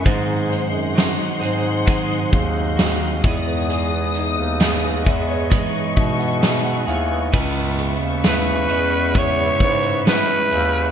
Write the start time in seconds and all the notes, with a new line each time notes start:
0.03 G#2 D#3 F#3 G#3 C4 D#4 G#4 F#5 C6, kick, closed hi-hat
0.26 D#4
0.49 C5, closed hi-hat
0.72 F#2 D#4
0.95 F#3 C4 D#4 F#4 G#4, snare, closed hi-hat
1.16 D#4
1.40 G#2 F#3 C4 D#4 G#4 C5, closed hi-hat
1.62 D#4
1.86 G#2 D#3 F#3 G#3 C4 D#4 G#4, kick, closed hi-hat
2.07 D#4
2.31 D#2 C5, kick, closed hi-hat
2.54 D#4
2.76 F#3 C4 D#4 F#4 G#4, snare, closed hi-hat
3.00 D#4
3.23 E2 E3 G#3 B3 D#4 E4 G#4 D#5 D#6, kick, closed hi-hat
3.46 B3
3.69 G#4, closed hi-hat
3.93 B3
4.15 D#4, closed hi-hat
4.38 D#2 B3
4.60 G#3 B3 D#4 G#4, snare, closed hi-hat
4.83 B3
5.03 E2 G#3 B3 D#4 G#4 E5 C#6, kick, closed hi-hat
5.29 B3 C#5
5.50 E3 G#3 B3 D#4 G#4 D#5, kick, closed hi-hat
5.74 B3
5.96 B2 D#4 E5, kick, closed hi-hat
6.19 B3 F#5, closed hi-hat
6.41 G#3 B3 D#4 G#4 E5, snare, closed hi-hat
6.64 B3 F#5
6.87 D#2 B3 D#4 E4 G#4 G#5, closed hi-hat
7.10 B3
7.32 C#2 C#3 G#3 B3 E4 G#4 B4 E5 C#6, kick, crash
7.56 closed hi-hat
7.78 G#3, closed hi-hat
8.02 D#2
8.24 G#3 B3 E4 G#4, snare, closed hi-hat
8.28 B4
8.69 E2 G#3 B3 E4 G#4, closed hi-hat
9.14 C#3 G#3 B3 E4 G#4 C#5, kick, closed hi-hat
9.60 G#2 G#3 C#5, kick, closed hi-hat
9.83 closed hi-hat
10.05 G#3 B3 E4 G#4 B4, snare, closed hi-hat
10.51 D#2 G#3 B3 E4 G#4, closed hi-hat